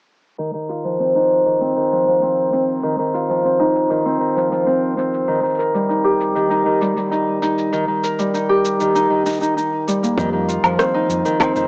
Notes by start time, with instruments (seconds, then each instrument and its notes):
0.38 harp D#3, cabasa
0.54 harp D#3
0.69 harp F4, cabasa
0.84 harp F3, cabasa
0.99 harp C4, cabasa
1.15 harp D#4
1.31 cabasa
1.45 harp D#3, cabasa
1.61 harp C4, cabasa
1.76 harp D#3
1.92 harp F3, cabasa
2.07 harp F3, cabasa
2.22 harp C4, cabasa
2.53 harp C4, cabasa
2.69 cabasa
2.72 cabasa
2.74 cabasa
2.77 cabasa
2.79 cabasa
2.82 harp D#3, cabasa
2.84 cabasa
2.99 harp D#3
3.14 harp F4, cabasa
3.29 harp F3, cabasa
3.44 harp C4, cabasa
3.60 harp D#4
3.76 cabasa
3.90 harp D#3, cabasa
4.06 harp C4, cabasa
4.21 harp D#3
4.36 harp F3, cabasa
4.51 harp F3, cabasa
4.67 harp C4, cabasa
4.97 harp C4, cabasa
5.14 cabasa
5.28 harp D#3, cabasa
5.35 cabasa
5.40 harp D#3, cabasa
5.45 cabasa
5.50 cabasa
5.55 harp A#4, cabasa
5.60 cabasa
5.74 harp G3, cabasa
5.89 harp D#4, cabasa
6.04 harp G4
6.21 cabasa
6.35 harp D#3, cabasa
6.51 harp D#4, cabasa
6.66 harp D#3
6.81 harp G3, cabasa
6.96 harp G3, cabasa
7.11 harp D#4, cabasa
7.42 harp D#4, cabasa
7.58 cabasa
7.72 harp D#3, cabasa
7.88 harp D#3
8.03 harp A#4, cabasa
8.19 harp G3, cabasa
8.34 harp D#4, cabasa
8.49 harp G4
8.65 cabasa
8.80 harp D#3, cabasa
8.95 harp D#4, cabasa
9.10 harp D#3
9.26 harp D#4, cabasa
9.29 cabasa
9.32 cabasa
9.34 cabasa
9.37 cabasa
9.40 harp D#4, cabasa
9.43 cabasa
9.57 harp D#4, cabasa
9.87 harp G3, cabasa
10.03 harp A#3, cabasa
10.17 fingered electric bass F2, harp D#3, kick, cabasa
10.33 harp D#3
10.48 harp F4, cabasa
10.64 fingered electric bass F2, harp F3, cabasa, low woodblock
10.79 harp C4, cross-stick, cabasa
10.94 harp D#4
11.10 fingered electric bass F2, cabasa
11.25 harp D#3, cabasa
11.40 harp C4, kick, cabasa, low woodblock
11.56 fingered electric bass F1, harp D#3, cabasa